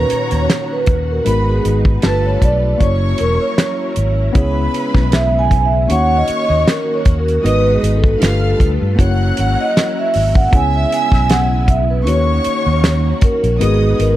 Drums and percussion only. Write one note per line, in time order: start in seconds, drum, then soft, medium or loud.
0.10 closed hi-hat medium
0.31 closed hi-hat medium
0.50 snare loud
0.50 closed hi-hat medium
0.86 kick medium
0.86 closed hi-hat medium
1.26 closed hi-hat medium
1.65 closed hi-hat medium
1.85 kick medium
2.02 snare loud
2.02 closed hi-hat medium
2.42 kick medium
2.42 closed hi-hat medium
2.80 kick medium
2.80 closed hi-hat medium
3.18 closed hi-hat medium
3.58 snare loud
3.58 closed hi-hat medium
3.96 closed hi-hat medium
4.35 kick loud
4.35 closed hi-hat medium
4.74 closed hi-hat medium
4.95 kick medium
4.95 snare soft
5.12 snare loud
5.12 closed hi-hat medium
5.51 kick medium
5.51 closed hi-hat medium
5.90 closed hi-hat medium
6.28 closed hi-hat medium
6.68 snare loud
6.68 closed hi-hat medium
7.05 kick medium
7.05 closed hi-hat medium
7.28 closed hi-hat soft
7.46 closed hi-hat medium
7.84 closed hi-hat medium
8.04 kick medium
8.22 snare loud
8.22 closed hi-hat medium
8.60 kick medium
8.60 closed hi-hat medium
8.99 kick medium
8.99 closed hi-hat medium
9.37 closed hi-hat medium
9.77 snare loud
9.77 closed hi-hat medium
10.14 open hi-hat medium
10.35 kick medium
10.53 kick loud
10.53 closed hi-hat medium
10.92 closed hi-hat medium
11.12 kick medium
11.12 snare soft
11.30 snare loud
11.30 closed hi-hat medium
11.68 kick medium
11.68 closed hi-hat medium
12.07 closed hi-hat medium
12.44 closed hi-hat medium
12.84 snare loud
12.84 closed hi-hat medium
13.21 kick loud
13.21 closed hi-hat medium
13.44 closed hi-hat medium
13.61 closed hi-hat medium
14.00 closed hi-hat medium